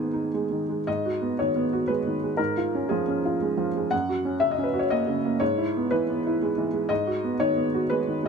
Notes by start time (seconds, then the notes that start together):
Already playing: G#2 D#3 D#4 G#4
0.00 B3
0.13 D#4
0.34 G#3
0.51 D#3
0.69 G#3
0.87 G#2 D#5
1.05 F#4
1.22 B3
1.39 D#3 C#5
1.56 B3
1.73 F#4
1.88 G#3 B4
2.07 D#3
2.23 G#3
2.37 G#2 A#4
2.57 F4
2.75 C#4
2.89 F3 G#4
3.08 C#4
3.25 F4
3.42 G#3
3.57 F3
3.76 G#3
3.91 F#2 F#5
4.09 F#4
4.25 C#4
4.40 C#3 E5
4.51 D#5
4.58 C#4
4.63 B4
4.73 F#4
4.79 C#5
4.90 A#3 D#5
5.07 C#3
5.25 A#3
5.40 G#2 C#5
5.58 E4
5.77 B3
5.91 E3 B4
6.10 B3
6.26 E4
6.42 G#3
6.58 E3
6.73 G#3
6.89 G#2 D#5
7.07 F#4
7.24 B3
7.40 D#3 C#5
7.56 B3
7.74 F#4
7.90 G#3 B4
8.08 D#3
8.23 G#3